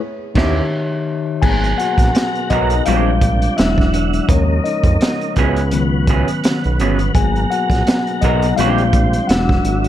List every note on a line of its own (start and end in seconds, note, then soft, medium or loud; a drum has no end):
0.34 0.61 D#2 medium
0.34 0.60 D#3 medium
0.34 0.61 E3 loud
0.34 0.62 A#3 medium
0.34 0.62 C#4 loud
0.34 0.61 D#4 loud
0.34 0.62 G4 loud
0.34 0.62 C#5 medium
0.34 0.62 E5 medium
0.34 kick loud
0.34 snare loud
0.34 crash medium
0.43 0.65 G4 medium
1.42 1.74 G#1 loud
1.42 2.84 B2 medium
1.42 2.81 F#3 soft
1.42 2.82 A#3 soft
1.42 2.82 B3 medium
1.42 2.84 F#4 medium
1.42 1.77 G#4 medium
1.42 2.84 A#4 medium
1.42 1.79 G#5 medium
1.42 kick loud
1.42 crash medium
1.64 closed hi-hat soft
1.78 2.47 F#4 medium
1.78 2.52 F#5 medium
1.78 closed hi-hat medium
1.98 2.12 A#1 medium
1.98 kick medium
1.98 snare soft
1.98 closed hi-hat soft
2.15 muted clean electric guitar stroke soft
2.15 snare loud
2.15 closed hi-hat medium
2.35 closed hi-hat soft
2.50 2.81 B1 medium
2.50 2.74 F#3 medium
2.50 2.74 B3 medium
2.50 2.74 D#4 medium
2.50 2.84 D#4 medium
2.50 2.74 A#4 medium
2.50 2.83 D#5 medium
2.50 kick medium
2.50 closed hi-hat medium
2.70 closed hi-hat soft
2.86 3.49 A#1 loud
2.86 3.57 C3 medium
2.86 3.36 G3 medium
2.86 3.36 G#3 medium
2.86 3.09 G#3 medium
2.86 3.36 C4 medium
2.86 3.10 C4 medium
2.86 3.57 D4 medium
2.86 3.36 D4 medium
2.86 3.10 D4 medium
2.86 3.54 F4 medium
2.86 3.57 G4 medium
2.86 3.10 G4 medium
2.86 3.59 F5 medium
2.86 closed hi-hat medium
3.21 kick medium
3.21 closed hi-hat medium
3.42 closed hi-hat medium
3.57 4.20 E1 medium
3.57 4.28 D3 medium
3.57 4.25 F#3 medium
3.57 4.26 G#3 soft
3.57 4.26 D4 medium
3.57 4.28 E4 medium
3.57 4.25 E4 medium
3.57 4.28 F#4 medium
3.57 4.31 E5 medium
3.57 snare loud
3.57 closed hi-hat medium
3.78 kick medium
3.78 snare soft
3.94 closed hi-hat medium
4.13 closed hi-hat soft
4.29 4.60 D#2 medium
4.29 7.12 C#3 medium
4.29 5.32 F3 medium
4.29 5.32 G#3 soft
4.29 5.35 A#3 medium
4.29 4.63 C#4 medium
4.29 5.35 D#4 medium
4.29 4.62 C#5 medium
4.29 kick loud
4.29 closed hi-hat medium
4.64 5.33 D#4 medium
4.64 5.32 D#5 medium
4.64 closed hi-hat medium
4.84 4.98 F2 medium
4.84 kick loud
4.84 closed hi-hat soft
5.01 muted clean electric guitar stroke soft
5.01 snare loud
5.01 closed hi-hat medium
5.21 closed hi-hat soft
5.36 6.24 C#2 medium
5.36 5.60 F#3 medium
5.36 7.13 B3 medium
5.36 5.60 B3 medium
5.36 5.60 C#4 loud
5.36 8.54 F#4 medium
5.36 5.60 G#4 medium
5.36 kick medium
5.36 closed hi-hat medium
5.56 closed hi-hat soft
5.71 6.21 D#3 medium
5.71 6.21 F#3 medium
5.71 6.22 B3 medium
5.71 closed hi-hat medium
6.07 6.27 F#3 medium
6.07 6.27 B3 medium
6.07 6.27 C#4 medium
6.07 6.27 G#4 medium
6.07 kick medium
6.07 closed hi-hat medium
6.28 closed hi-hat medium
6.44 snare loud
6.44 closed hi-hat medium
6.64 6.81 B1 medium
6.64 closed hi-hat soft
6.80 7.10 G1 medium
6.80 6.98 F#3 medium
6.80 6.98 B3 medium
6.80 6.98 C#4 medium
6.80 6.98 G#4 medium
6.80 closed hi-hat medium
6.99 closed hi-hat soft
7.14 7.46 G#1 loud
7.14 8.55 B2 medium
7.14 7.64 F#3 medium
7.14 7.65 A#3 soft
7.14 7.65 B3 medium
7.14 7.49 G#4 medium
7.14 8.56 A#4 medium
7.14 7.48 G#5 medium
7.14 kick loud
7.14 closed hi-hat medium
7.36 closed hi-hat soft
7.50 8.19 F#4 medium
7.50 8.24 F#5 medium
7.50 closed hi-hat medium
7.70 7.83 A#1 medium
7.70 kick medium
7.70 snare soft
7.70 closed hi-hat soft
7.87 muted clean electric guitar stroke soft
7.87 snare loud
7.87 closed hi-hat medium
8.07 closed hi-hat soft
8.21 8.53 B1 medium
8.21 8.46 F#3 medium
8.21 8.46 B3 medium
8.21 8.55 D#4 medium
8.21 8.46 D#4 medium
8.21 8.46 A#4 medium
8.21 8.58 D#5 medium
8.21 kick medium
8.21 closed hi-hat medium
8.42 closed hi-hat soft
8.56 9.20 A#1 loud
8.56 9.88 D3 medium
8.56 9.25 G3 medium
8.56 9.25 G#3 medium
8.56 8.81 G#3 medium
8.56 9.25 C4 medium
8.56 9.29 C4 medium
8.56 8.81 C4 medium
8.56 9.25 D4 medium
8.56 8.81 D4 medium
8.56 9.25 F4 medium
8.56 9.29 G4 medium
8.56 9.24 F5 loud
8.56 closed hi-hat medium
8.60 8.82 G4 loud
8.78 closed hi-hat soft
8.93 kick medium
8.93 closed hi-hat medium
9.13 closed hi-hat medium
9.27 9.60 E1 loud
9.27 9.88 F#3 soft
9.27 9.88 F#3 medium
9.27 9.88 G#3 soft
9.27 9.88 D4 medium
9.27 9.88 E4 medium
9.27 9.88 F#4 medium
9.27 9.88 F#5 medium
9.27 snare loud
9.27 closed hi-hat medium
9.49 kick medium
9.49 snare soft
9.65 9.88 G#1 loud
9.65 closed hi-hat medium
9.84 closed hi-hat soft